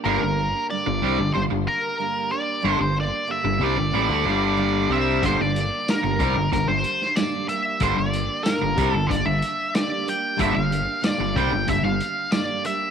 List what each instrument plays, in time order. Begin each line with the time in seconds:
0.04 fingered electric bass G1, steel-string acoustic guitar G2 D3 G3 A#3 D4 G4, distorted electric guitar G2 D3, lead electric guitar A#4
0.22 fingered electric bass G1, distorted electric guitar G2 D3
0.38 steel-string acoustic guitar G3 A#3 D4 G4
0.70 steel-string acoustic guitar G2 D3 G3 A#3 D4 G4, lead electric guitar D5
0.86 fingered electric bass G1, distorted electric guitar G2 D3
1.03 fingered electric bass C2, distorted electric guitar C3 G3, steel-string acoustic guitar G3 A#3 D4 G4
1.18 fingered electric bass G1, distorted electric guitar G2 D3
1.33 fingered electric bass G1, distorted electric guitar G2 D3, steel-string acoustic guitar G3 A#3 D4 G4, lead electric guitar C5
1.50 fingered electric bass G1, distorted electric guitar G2 D3
1.68 lead electric guitar A#4
1.99 steel-string acoustic guitar G2 D3 G3 A#3 D4 G4
2.30 steel-string acoustic guitar G3 A#3 D4 G4, lead electric guitar D5
2.61 fingered electric bass G1, steel-string acoustic guitar G2 D3 G3 A#3 D4 G4, distorted electric guitar G2
2.65 distorted electric guitar D3
2.79 fingered electric bass G1, distorted electric guitar G2 D3, lead electric guitar C5
2.94 steel-string acoustic guitar G3 A#3 D4 G4
3.00 lead electric guitar D5
3.27 steel-string acoustic guitar G2 D3 G3 A#3 D4 G4
3.31 lead electric guitar E5
3.44 fingered electric bass G1, distorted electric guitar G2 D3
3.59 fingered electric bass C2, distorted electric guitar C3 G3, steel-string acoustic guitar G3 A#3 D4 G4
3.64 lead electric guitar D5
3.76 fingered electric bass G1, distorted electric guitar G2 D3
3.92 fingered electric bass A1, distorted electric guitar A2 E3, steel-string acoustic guitar G3 A#3 D4 G4
4.09 fingered electric bass D2, distorted electric guitar D3 A3
4.24 fingered electric bass G1, distorted electric guitar G2 D3 G3
4.57 steel-string acoustic guitar G2 D3 G3 A#3 D4 G4
4.89 fingered electric bass C2, distorted electric guitar C3 G3 C4, steel-string acoustic guitar G3 A#3 D4 G4, lead electric guitar E5
5.22 fingered electric bass G1, distorted electric guitar G2 D3, steel-string acoustic guitar G2 D3 G3 A#3 D4 G4, lead electric guitar C5, kick, closed hi-hat
5.40 fingered electric bass G1, distorted electric guitar G2 D3, lead electric guitar D5
5.55 steel-string acoustic guitar G3 A#3 D4 G4, closed hi-hat
5.88 steel-string acoustic guitar G2 D3 G3 A#3 D4 G4, lead electric guitar A#4, snare, closed hi-hat, tambourine
6.04 fingered electric bass G1, distorted electric guitar G2 D3
6.19 fingered electric bass C2, distorted electric guitar C3 G3, steel-string acoustic guitar G3 A#3 D4, kick, closed hi-hat
6.35 fingered electric bass G1, distorted electric guitar G2 D3
6.51 fingered electric bass G1, distorted electric guitar G2 D3, steel-string acoustic guitar G3 A#3 D4 G4, lead electric guitar A#4, kick, closed hi-hat
6.67 fingered electric bass G1, distorted electric guitar G2 D3, lead electric guitar C5
6.84 closed hi-hat
7.02 snare
7.16 steel-string acoustic guitar G2 D3 G3 A#3 D4 G4, lead electric guitar D5, snare, closed hi-hat, tambourine
7.47 steel-string acoustic guitar G3 A#3 D4 G4, lead electric guitar E5, closed hi-hat
7.80 fingered electric bass G1, distorted electric guitar G2 D3, steel-string acoustic guitar G2 D3 G3 A#3 D4 G4, lead electric guitar C5, kick, closed hi-hat
7.96 fingered electric bass G1, distorted electric guitar G2 D3, lead electric guitar D5
8.13 steel-string acoustic guitar G3 A#3 D4 G4, closed hi-hat
8.43 steel-string acoustic guitar G2 D3 G3 A#3 D4 G4, lead electric guitar A#4, snare, closed hi-hat, tambourine
8.62 fingered electric bass G1, distorted electric guitar G2 D3
8.76 fingered electric bass C2, distorted electric guitar C3 G3, steel-string acoustic guitar G3 A#3 D4 G4, kick, closed hi-hat
8.91 fingered electric bass G1, distorted electric guitar G2 D3, lead electric guitar A4
9.07 fingered electric bass G1, distorted electric guitar G2 D3, steel-string acoustic guitar G3, lead electric guitar D5, kick
9.11 steel-string acoustic guitar A#3 D4 G4, closed hi-hat
9.25 fingered electric bass G1, distorted electric guitar G2 D3, lead electric guitar E5
9.42 closed hi-hat
9.75 steel-string acoustic guitar G2 D3 G3 A#3 D4 G4, lead electric guitar D5, snare, closed hi-hat, tambourine
10.05 steel-string acoustic guitar G3 A#3 D4 G4, lead electric guitar G5, closed hi-hat
10.37 fingered electric bass G1, steel-string acoustic guitar G2 D3 G3 A#3 D4 G4, distorted electric guitar G2 D3, lead electric guitar E5, kick, closed hi-hat
10.53 fingered electric bass G1, distorted electric guitar G2 D3, lead electric guitar F5
10.71 steel-string acoustic guitar G3 A#3 D4 G4, closed hi-hat
11.01 steel-string acoustic guitar G2 D3 G3 A#3 D4 G4, lead electric guitar D5, snare, closed hi-hat, tambourine
11.18 fingered electric bass G1, distorted electric guitar G2 D3
11.34 fingered electric bass C2, distorted electric guitar C3 G3, steel-string acoustic guitar G3 A#3 D4 G4, lead electric guitar G5, kick, closed hi-hat
11.52 fingered electric bass G1, distorted electric guitar G2 D3
11.65 fingered electric bass G1, distorted electric guitar G2 D3, steel-string acoustic guitar G3 A#3 D4 G4, kick, closed hi-hat
11.69 lead electric guitar E5
11.83 fingered electric bass G1, distorted electric guitar G2 D3, lead electric guitar F5
12.01 closed hi-hat
12.32 steel-string acoustic guitar G2 D3 G3 A#3 D4 G4, lead electric guitar D5, snare, closed hi-hat, tambourine
12.65 steel-string acoustic guitar G3 A#3 D4 G4, lead electric guitar E5, closed hi-hat